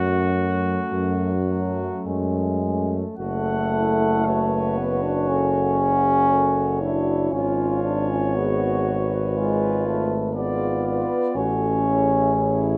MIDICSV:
0, 0, Header, 1, 6, 480
1, 0, Start_track
1, 0, Key_signature, 3, "minor"
1, 0, Tempo, 1121495
1, 1360, Tempo, 1071429
1, 1361, Time_signature, 4, 2, 24, 8
1, 1840, Tempo, 1023891
1, 3760, Tempo, 1001669
1, 5883, End_track
2, 0, Start_track
2, 0, Title_t, "Flugelhorn"
2, 0, Program_c, 0, 56
2, 0, Note_on_c, 0, 66, 79
2, 862, Note_off_c, 0, 66, 0
2, 1359, Note_on_c, 0, 78, 65
2, 1844, Note_on_c, 0, 73, 66
2, 1851, Note_off_c, 0, 78, 0
2, 2802, Note_off_c, 0, 73, 0
2, 2805, Note_on_c, 0, 73, 55
2, 3273, Note_off_c, 0, 73, 0
2, 3292, Note_on_c, 0, 73, 65
2, 4580, Note_off_c, 0, 73, 0
2, 4721, Note_on_c, 0, 74, 59
2, 4945, Note_off_c, 0, 74, 0
2, 4968, Note_on_c, 0, 74, 60
2, 5204, Note_on_c, 0, 73, 59
2, 5211, Note_off_c, 0, 74, 0
2, 5678, Note_off_c, 0, 73, 0
2, 5681, Note_on_c, 0, 73, 57
2, 5883, Note_off_c, 0, 73, 0
2, 5883, End_track
3, 0, Start_track
3, 0, Title_t, "French horn section"
3, 0, Program_c, 1, 60
3, 0, Note_on_c, 1, 61, 50
3, 148, Note_off_c, 1, 61, 0
3, 163, Note_on_c, 1, 61, 57
3, 634, Note_off_c, 1, 61, 0
3, 639, Note_on_c, 1, 61, 55
3, 1114, Note_off_c, 1, 61, 0
3, 1130, Note_on_c, 1, 61, 52
3, 1299, Note_off_c, 1, 61, 0
3, 1368, Note_on_c, 1, 69, 78
3, 1827, Note_off_c, 1, 69, 0
3, 1848, Note_on_c, 1, 71, 80
3, 2316, Note_off_c, 1, 71, 0
3, 2330, Note_on_c, 1, 69, 67
3, 2563, Note_on_c, 1, 68, 66
3, 2564, Note_off_c, 1, 69, 0
3, 2802, Note_off_c, 1, 68, 0
3, 2803, Note_on_c, 1, 69, 66
3, 3037, Note_off_c, 1, 69, 0
3, 3045, Note_on_c, 1, 66, 66
3, 3282, Note_off_c, 1, 66, 0
3, 3284, Note_on_c, 1, 65, 65
3, 3761, Note_on_c, 1, 68, 66
3, 3764, Note_off_c, 1, 65, 0
3, 4004, Note_off_c, 1, 68, 0
3, 4015, Note_on_c, 1, 71, 76
3, 4717, Note_on_c, 1, 68, 67
3, 4726, Note_off_c, 1, 71, 0
3, 4959, Note_off_c, 1, 68, 0
3, 4968, Note_on_c, 1, 71, 70
3, 5200, Note_off_c, 1, 71, 0
3, 5212, Note_on_c, 1, 69, 66
3, 5446, Note_off_c, 1, 69, 0
3, 5449, Note_on_c, 1, 68, 73
3, 5883, Note_off_c, 1, 68, 0
3, 5883, End_track
4, 0, Start_track
4, 0, Title_t, "Trombone section"
4, 0, Program_c, 2, 61
4, 0, Note_on_c, 2, 57, 51
4, 147, Note_off_c, 2, 57, 0
4, 154, Note_on_c, 2, 57, 54
4, 563, Note_off_c, 2, 57, 0
4, 636, Note_on_c, 2, 57, 54
4, 1113, Note_off_c, 2, 57, 0
4, 1125, Note_on_c, 2, 57, 51
4, 1356, Note_off_c, 2, 57, 0
4, 1361, Note_on_c, 2, 66, 63
4, 1585, Note_off_c, 2, 66, 0
4, 1603, Note_on_c, 2, 64, 60
4, 1837, Note_off_c, 2, 64, 0
4, 1849, Note_on_c, 2, 66, 72
4, 2786, Note_off_c, 2, 66, 0
4, 2798, Note_on_c, 2, 66, 64
4, 3034, Note_off_c, 2, 66, 0
4, 3042, Note_on_c, 2, 64, 63
4, 3281, Note_off_c, 2, 64, 0
4, 3284, Note_on_c, 2, 65, 62
4, 3764, Note_off_c, 2, 65, 0
4, 3768, Note_on_c, 2, 66, 66
4, 4247, Note_off_c, 2, 66, 0
4, 4250, Note_on_c, 2, 65, 67
4, 4649, Note_off_c, 2, 65, 0
4, 4730, Note_on_c, 2, 65, 61
4, 5196, Note_off_c, 2, 65, 0
4, 5204, Note_on_c, 2, 66, 59
4, 5442, Note_off_c, 2, 66, 0
4, 5444, Note_on_c, 2, 64, 61
4, 5677, Note_off_c, 2, 64, 0
4, 5683, Note_on_c, 2, 64, 64
4, 5883, Note_off_c, 2, 64, 0
4, 5883, End_track
5, 0, Start_track
5, 0, Title_t, "Euphonium"
5, 0, Program_c, 3, 58
5, 0, Note_on_c, 3, 54, 55
5, 148, Note_off_c, 3, 54, 0
5, 155, Note_on_c, 3, 54, 55
5, 629, Note_off_c, 3, 54, 0
5, 639, Note_on_c, 3, 54, 84
5, 881, Note_on_c, 3, 56, 83
5, 888, Note_off_c, 3, 54, 0
5, 1296, Note_off_c, 3, 56, 0
5, 1370, Note_on_c, 3, 57, 99
5, 2086, Note_on_c, 3, 59, 76
5, 2094, Note_off_c, 3, 57, 0
5, 2204, Note_on_c, 3, 62, 86
5, 2211, Note_off_c, 3, 59, 0
5, 2320, Note_on_c, 3, 61, 115
5, 2327, Note_off_c, 3, 62, 0
5, 3039, Note_off_c, 3, 61, 0
5, 3045, Note_on_c, 3, 62, 79
5, 3274, Note_on_c, 3, 61, 89
5, 3281, Note_off_c, 3, 62, 0
5, 3518, Note_off_c, 3, 61, 0
5, 3521, Note_on_c, 3, 62, 79
5, 3642, Note_on_c, 3, 61, 81
5, 3649, Note_off_c, 3, 62, 0
5, 3765, Note_on_c, 3, 59, 85
5, 3772, Note_off_c, 3, 61, 0
5, 4118, Note_off_c, 3, 59, 0
5, 4245, Note_on_c, 3, 56, 85
5, 4466, Note_off_c, 3, 56, 0
5, 4489, Note_on_c, 3, 57, 80
5, 4721, Note_on_c, 3, 59, 78
5, 4728, Note_off_c, 3, 57, 0
5, 5201, Note_on_c, 3, 61, 104
5, 5208, Note_off_c, 3, 59, 0
5, 5883, Note_off_c, 3, 61, 0
5, 5883, End_track
6, 0, Start_track
6, 0, Title_t, "Tuba"
6, 0, Program_c, 4, 58
6, 0, Note_on_c, 4, 42, 73
6, 338, Note_off_c, 4, 42, 0
6, 394, Note_on_c, 4, 42, 72
6, 824, Note_off_c, 4, 42, 0
6, 883, Note_on_c, 4, 42, 66
6, 1306, Note_off_c, 4, 42, 0
6, 1365, Note_on_c, 4, 30, 68
6, 3263, Note_off_c, 4, 30, 0
6, 3282, Note_on_c, 4, 32, 69
6, 5055, Note_off_c, 4, 32, 0
6, 5199, Note_on_c, 4, 33, 68
6, 5883, Note_off_c, 4, 33, 0
6, 5883, End_track
0, 0, End_of_file